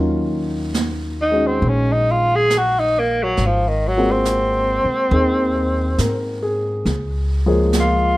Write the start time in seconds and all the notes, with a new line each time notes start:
Already playing: D#2 D#3 F#3 A#3 C#4 F4
0.74 snare, hi-hat pedal
1.22 D#4
1.31 G#3 C#4 D#4 F#4
1.46 C4
1.62 A#1, brush sweep
1.69 C#4
1.92 D#4
2.11 F4
2.35 G#4
2.50 snare, hi-hat pedal
2.58 F#4
2.79 D#4
2.99 A#3
3.23 F#3
3.37 G#1, brush sweep, snare
3.46 F3
3.68 D#3
3.88 F#3
3.97 G#3 A#3 C4 F4 F#4
4.11 C4
4.25 snare, hi-hat pedal
4.84 muted upright bass stroke
5.11 D#2 A#3 C4 D#4 G#4, brush sweep
5.56 C5
5.98 G#2 A#4, snare, hi-hat pedal
6.43 G#4
6.85 C#2, brush sweep, snare
7.46 F3 G#3 A#3 G#4 C#5
7.73 snare, hi-hat pedal
7.80 F4